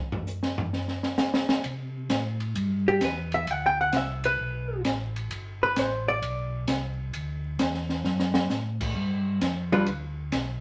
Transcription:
0.12 floor tom medium
0.27 hi-hat pedal medium
0.43 snare medium
0.58 floor tom medium
0.73 snare soft
0.88 snare soft
1.03 snare medium
1.18 snare medium
1.18 hi-hat pedal medium
1.34 snare medium
1.49 snare medium
1.64 2.09 C3 medium
1.64 kick soft
1.64 ride medium
2.10 2.54 A2 medium
2.10 kick soft
2.10 snare medium
2.10 hi-hat pedal medium
2.10 ride medium
2.40 ride soft
2.55 3.00 G2 medium
2.55 kick soft
2.55 ride medium
2.88 3.02 G4 medium
3.01 3.46 E2 medium
3.01 3.33 B4 medium
3.01 kick soft
3.01 snare medium
3.01 hi-hat pedal medium
3.01 ride medium
3.32 3.51 E5 loud
3.32 ride soft
3.47 3.92 D2 medium
3.47 3.64 F#5 medium
3.47 kick soft
3.47 ride medium
3.66 3.79 G5 medium
3.81 3.94 F#5 medium
3.92 4.37 C2 medium
3.92 kick soft
3.92 snare medium
3.92 hi-hat pedal medium
3.92 ride medium
3.97 4.25 E5 medium
4.24 4.81 B4 medium
4.24 ride medium
4.39 4.83 B1 medium
4.39 kick soft
4.85 5.29 A1 medium
4.85 kick soft
4.85 snare medium
4.85 hi-hat pedal soft
4.85 ride medium
5.16 ride soft
5.31 5.75 G1 medium
5.31 kick soft
5.31 ride medium
5.63 5.79 B4 medium
5.76 6.21 A1 medium
5.76 6.07 C5 medium
5.76 kick soft
5.76 snare medium
5.76 hi-hat pedal medium
5.76 ride medium
6.08 6.64 D5 loud
6.22 6.66 B1 medium
6.22 kick soft
6.22 ride medium
6.67 7.12 C2 medium
6.67 kick soft
6.67 snare medium
6.67 hi-hat pedal medium
6.67 ride medium
7.13 7.57 D2 medium
7.13 kick soft
7.13 ride medium
7.59 8.03 E2 medium
7.59 kick soft
7.59 snare medium
7.59 hi-hat pedal medium
7.59 ride medium
7.74 snare soft
7.89 snare soft
8.04 8.48 F#2 medium
8.04 snare soft
8.20 snare medium
8.34 snare medium
8.50 8.94 A2 medium
8.50 snare medium
8.50 hi-hat pedal soft
8.81 kick medium
8.81 crash medium
8.95 9.40 G2 medium
8.95 kick soft
9.41 9.86 F2 medium
9.41 kick soft
9.41 snare medium
9.41 hi-hat pedal medium
9.41 ride medium
9.72 9.86 G3 medium
9.72 9.86 D4 medium
9.72 9.86 F4 medium
9.72 9.86 B4 medium
9.72 ride soft
9.86 10.31 D2 medium
9.86 kick soft
9.86 ride medium
10.32 10.60 B1 medium
10.32 kick soft
10.32 snare medium
10.32 hi-hat pedal soft
10.32 ride medium

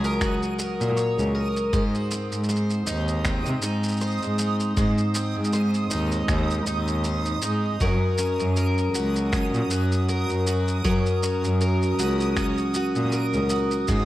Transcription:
0.00 0.33 C#2 medium
0.00 1.76 F#3 medium
0.00 0.21 F#4 medium
0.00 0.95 C#5 medium
0.00 14.05 D#6 medium
0.04 0.58 A#4 medium
0.04 shaker soft
0.21 2.11 F#4 medium
0.21 finger snap medium
0.21 kick loud
0.21 shaker soft
0.43 shaker soft
0.59 1.34 A#4 medium
0.59 shaker medium
0.80 0.93 A#2 medium
0.80 shaker soft
0.97 1.73 C#5 medium
0.97 shaker soft
1.18 1.31 C#2 medium
1.18 shaker soft
1.35 1.82 A#4 medium
1.56 shaker soft
1.73 4.76 G#2 medium
1.73 1.89 G#2 medium
1.73 2.48 C5 medium
1.73 kick loud
1.73 shaker soft
1.95 shaker soft
2.11 3.24 C4 medium
2.11 shaker medium
2.32 2.80 G#2 medium
2.32 shaker soft
2.44 shaker soft
2.49 4.00 C5 medium
2.49 shaker soft
2.56 shaker soft
2.70 shaker soft
2.87 3.38 D#2 medium
2.87 3.62 D#4 medium
2.87 shaker medium
3.08 shaker soft
3.25 5.14 C4 medium
3.25 finger snap medium
3.25 kick loud
3.25 shaker soft
3.46 3.59 C3 medium
3.46 shaker soft
3.62 4.14 G#2 medium
3.62 4.38 D#4 medium
3.62 shaker medium
3.84 shaker soft
3.88 shaker soft
3.92 shaker soft
3.96 shaker soft
4.01 4.77 C5 medium
4.01 shaker soft
4.06 shaker soft
4.11 shaker soft
4.17 shaker soft
4.22 4.70 G#2 medium
4.22 shaker soft
4.38 5.90 D#4 medium
4.38 shaker medium
4.60 shaker soft
4.77 4.93 G#2 medium
4.77 7.81 G#2 medium
4.77 5.52 C5 medium
4.77 kick loud
4.77 shaker soft
4.98 shaker soft
5.14 6.28 C4 medium
5.14 shaker medium
5.36 5.84 G#2 medium
5.44 shaker soft
5.53 7.04 C5 medium
5.53 shaker soft
5.74 shaker soft
5.91 6.28 D#2 medium
5.91 6.66 D#4 medium
5.91 shaker medium
6.12 shaker soft
6.28 6.58 D#2 medium
6.28 7.90 C4 medium
6.28 finger snap medium
6.28 kick loud
6.28 shaker soft
6.50 shaker soft
6.66 7.36 D#2 medium
6.66 7.42 D#4 medium
6.66 shaker medium
6.88 shaker soft
7.04 7.81 C5 medium
7.04 shaker soft
7.25 shaker soft
7.42 7.72 G#2 medium
7.42 7.89 D#4 medium
7.42 shaker medium
7.80 7.96 F#2 medium
7.80 10.84 F#3 medium
7.80 8.56 A#4 medium
7.80 kick loud
7.80 shaker soft
8.18 9.31 C#4 medium
8.18 shaker medium
8.39 8.87 F#2 medium
8.39 shaker soft
8.56 10.08 A#4 medium
8.56 shaker soft
8.78 shaker soft
8.94 9.45 C#2 medium
8.94 9.71 F#4 medium
8.94 shaker medium
9.16 shaker soft
9.32 11.22 C#4 medium
9.32 finger snap medium
9.32 kick loud
9.32 shaker soft
9.53 9.66 A#2 medium
9.53 shaker soft
9.70 10.21 F#2 medium
9.70 10.46 F#4 medium
9.70 shaker medium
9.92 shaker soft
10.09 10.84 A#4 medium
10.09 shaker soft
10.29 10.77 F#2 medium
10.29 shaker soft
10.47 11.99 F#4 medium
10.47 shaker medium
10.68 shaker soft
10.84 11.01 F#2 medium
10.84 13.92 F#3 medium
10.84 11.60 A#4 medium
10.84 kick loud
10.84 shaker soft
11.06 shaker soft
11.23 12.36 C#4 medium
11.23 shaker medium
11.44 11.92 F#2 medium
11.44 shaker soft
11.61 13.12 A#4 medium
11.61 shaker soft
11.82 shaker soft
11.99 12.49 C#2 medium
11.99 12.75 F#4 medium
11.99 shaker medium
12.20 shaker soft
12.37 13.97 C#4 medium
12.37 finger snap medium
12.37 kick medium
12.37 shaker soft
12.58 shaker soft
12.74 13.50 F#4 medium
12.74 shaker medium
12.95 13.08 A#2 medium
12.95 shaker soft
13.12 13.89 A#4 medium
13.12 shaker soft
13.33 13.46 C#2 medium
13.33 shaker soft
13.49 14.05 F#4 medium
13.49 shaker medium
13.71 shaker soft
13.88 14.04 G#2 medium
13.88 14.05 G#2 medium
13.88 14.05 C5 medium
13.88 kick loud
13.88 shaker soft

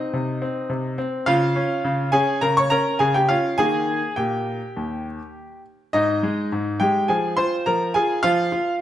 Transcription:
0.00 0.13 C4 soft
0.00 0.95 D#4 medium
0.00 0.98 D#5 medium
0.13 0.41 C3 medium
0.42 0.69 C4 medium
0.69 0.97 C3 medium
0.98 1.26 C4 medium
1.26 1.55 C#3 medium
1.26 2.09 F4 medium
1.26 2.08 F5 loud
1.56 1.83 C#4 medium
1.84 2.12 C#3 medium
2.12 2.41 C#4 medium
2.12 2.40 G#4 medium
2.12 2.41 G#5 medium
2.41 2.70 C#3 medium
2.41 2.55 A#4 medium
2.41 2.56 A#5 medium
2.57 2.71 C#5 medium
2.57 2.71 C#6 loud
2.70 2.99 C#4 medium
2.70 2.98 A#4 medium
2.70 2.99 A#5 loud
2.99 3.28 C#3 medium
2.99 3.13 G#4 medium
2.99 3.14 G#5 medium
3.14 3.29 G4 medium
3.14 3.29 G5 medium
3.29 3.58 C#4 medium
3.29 3.57 F4 medium
3.29 3.58 F5 medium
3.58 4.00 D#3 medium
3.58 4.06 A#3 soft
3.58 4.13 G#4 medium
3.58 4.17 G#5 loud
4.16 4.58 A#2 soft
4.16 5.60 G4 medium
4.16 5.05 G5 medium
4.77 5.17 D#2 soft
5.93 6.22 G#2 medium
5.93 6.77 D#4 medium
5.93 6.45 D#5 medium
6.23 6.51 G#3 medium
6.52 6.80 G#2 medium
6.80 7.08 G#3 soft
6.80 7.07 G4 medium
6.80 7.09 G5 medium
7.08 7.37 F3 medium
7.08 7.36 G#4 medium
7.08 7.37 G#5 medium
7.37 7.65 F4 medium
7.37 7.64 C5 medium
7.37 7.54 C6 medium
7.66 7.94 F3 medium
7.66 7.93 A#4 medium
7.66 7.92 A#5 medium
7.94 8.22 F4 medium
7.94 8.22 G#4 medium
7.94 8.20 G#5 medium
8.23 8.51 F3 medium
8.23 8.51 F4 medium
8.23 8.74 F5 loud
8.52 8.80 F4 medium

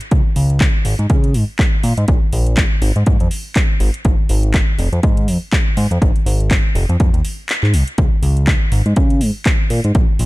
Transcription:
0.01 closed hi-hat soft
0.11 0.21 C#2 loud
0.11 kick loud
0.11 closed hi-hat medium
0.36 0.68 C#2 loud
0.36 open hi-hat loud
0.50 closed hi-hat soft
0.60 kick loud
0.60 clap loud
0.60 closed hi-hat medium
0.85 0.95 G#1 medium
0.85 open hi-hat loud
0.99 1.07 G#2 medium
0.99 closed hi-hat soft
1.10 1.36 C#3 loud
1.10 kick loud
1.10 closed hi-hat medium
1.24 closed hi-hat soft
1.34 1.44 G#2 medium
1.34 open hi-hat loud
1.59 kick loud
1.59 clap loud
1.59 closed hi-hat medium
1.83 1.94 A#2 loud
1.83 open hi-hat loud
1.97 2.05 G#2 medium
1.97 closed hi-hat soft
2.08 2.18 A#1 loud
2.08 kick loud
2.08 closed hi-hat medium
2.33 2.65 A#1 loud
2.33 open hi-hat loud
2.47 closed hi-hat soft
2.57 kick loud
2.57 clap loud
2.57 closed hi-hat medium
2.82 2.92 G#1 medium
2.82 open hi-hat loud
2.96 3.03 G#2 medium
2.96 closed hi-hat soft
3.06 3.17 G#2 medium
3.06 kick loud
3.06 closed hi-hat medium
3.20 3.28 F2 loud
3.20 closed hi-hat medium
3.31 open hi-hat loud
3.56 kick loud
3.56 clap loud
3.56 closed hi-hat medium
3.80 3.90 G#1 loud
3.80 open hi-hat loud
3.94 closed hi-hat soft
4.05 4.15 G#1 loud
4.05 kick loud
4.05 closed hi-hat medium
4.29 4.62 G#1 loud
4.29 open hi-hat loud
4.43 closed hi-hat soft
4.54 kick loud
4.54 clap loud
4.54 closed hi-hat medium
4.79 4.89 F1 loud
4.79 open hi-hat loud
4.93 5.00 F2 medium
4.93 closed hi-hat soft
5.03 5.29 G#2 loud
5.03 kick loud
5.03 closed hi-hat medium
5.17 closed hi-hat medium
5.28 5.38 F2 medium
5.28 open hi-hat loud
5.53 kick loud
5.53 clap loud
5.53 closed hi-hat medium
5.77 5.87 G#2 loud
5.77 open hi-hat loud
5.91 5.99 F2 medium
5.91 closed hi-hat medium
6.02 6.12 G#1 loud
6.02 kick loud
6.02 closed hi-hat medium
6.16 closed hi-hat soft
6.26 6.58 G#1 loud
6.26 open hi-hat loud
6.40 closed hi-hat soft
6.51 kick loud
6.51 clap loud
6.51 closed hi-hat medium
6.75 6.85 F1 medium
6.75 open hi-hat loud
6.89 6.97 F2 loud
6.89 closed hi-hat soft
7.00 7.10 F2 medium
7.00 kick loud
7.00 closed hi-hat medium
7.14 7.21 D#2 loud
7.14 closed hi-hat medium
7.25 open hi-hat loud
7.49 clap loud
7.49 closed hi-hat medium
7.63 7.75 G#2 medium
7.63 clap soft
7.73 7.84 C2 medium
7.73 open hi-hat loud
7.88 closed hi-hat medium
7.98 8.08 C#2 loud
7.98 kick loud
7.98 closed hi-hat medium
8.23 8.55 C#2 loud
8.23 open hi-hat loud
8.37 closed hi-hat soft
8.47 kick loud
8.47 clap loud
8.47 closed hi-hat medium
8.72 8.82 G#1 loud
8.72 open hi-hat loud
8.86 8.94 G#2 loud
8.86 closed hi-hat soft
8.96 9.23 C#3 loud
8.96 kick loud
8.96 closed hi-hat medium
9.10 closed hi-hat medium
9.21 9.31 G#2 medium
9.21 open hi-hat loud
9.46 kick loud
9.46 clap loud
9.46 closed hi-hat medium
9.70 9.80 A#2 loud
9.70 open hi-hat loud
9.84 9.92 G#2 medium
9.84 closed hi-hat medium
9.95 10.05 A#1 loud
9.95 kick loud
9.95 closed hi-hat medium
10.19 10.26 A#1 loud
10.19 open hi-hat loud

